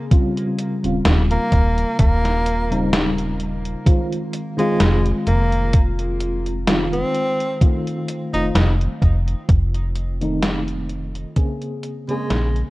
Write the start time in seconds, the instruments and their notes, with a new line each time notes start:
Already playing: fm electric piano C#3 A#3 C4 G#4
0.11 fm electric piano C#3 G3 C4 F4, kick, closed hi-hat
0.37 closed hi-hat
0.59 closed hi-hat
0.83 fm bass D#1, fm electric piano C#3 G3 C4 F4, closed hi-hat
1.05 fm bass D#1, snare, closed hi-hat
1.31 tenor saxophone A#3, closed hi-hat
1.52 fm bass D#1, kick, closed hi-hat
1.78 closed hi-hat
1.99 fm bass D#1, tenor saxophone A#3, kick, closed hi-hat
2.25 snare, closed hi-hat
2.46 closed hi-hat
2.70 fm electric piano C#3 G3 C4 D#4, closed hi-hat
2.93 snare, closed hi-hat
3.18 closed hi-hat
3.40 closed hi-hat
3.65 closed hi-hat
3.85 fm electric piano D#3 G#3 C4 F4, kick, closed hi-hat
4.12 closed hi-hat
4.33 closed hi-hat
4.57 fm electric piano D#3 G#3 C4 F4, tenor saxophone G#3, closed hi-hat
4.80 fm bass F1, snare, closed hi-hat
5.06 closed hi-hat
5.27 fm bass F1, tenor saxophone A#3, closed hi-hat
5.52 closed hi-hat
5.73 kick, closed hi-hat
5.99 closed hi-hat
6.20 closed hi-hat
6.46 closed hi-hat
6.67 fm electric piano D#3 G#3 C4 F4, snare, closed hi-hat
6.93 tenor saxophone C4, closed hi-hat
7.14 closed hi-hat
7.40 closed hi-hat
7.61 fm electric piano D#3 A3 C4 F4, kick, closed hi-hat
7.87 closed hi-hat
8.08 closed hi-hat
8.32 fm bass F1, fm electric piano D#3 A3 C4 F4, tenor saxophone D#4, closed hi-hat
8.55 fm bass F1, tenor saxophone D#4, snare, closed hi-hat
8.81 closed hi-hat
9.02 fm bass F1, kick, closed hi-hat
9.28 closed hi-hat
9.49 fm bass F1, kick, closed hi-hat
9.74 closed hi-hat
9.96 closed hi-hat
10.21 fm electric piano D#3 A3 C4 D#4, closed hi-hat
10.43 snare, closed hi-hat
10.68 closed hi-hat
10.89 closed hi-hat
11.15 closed hi-hat
11.36 fm electric piano C#3 A#3 C4 G#4, kick, closed hi-hat
11.62 closed hi-hat
11.83 closed hi-hat
12.08 fm electric piano C#3 A#3 C4 G#4, tenor saxophone G#3, closed hi-hat
12.30 fm bass A#1, snare, closed hi-hat
12.56 closed hi-hat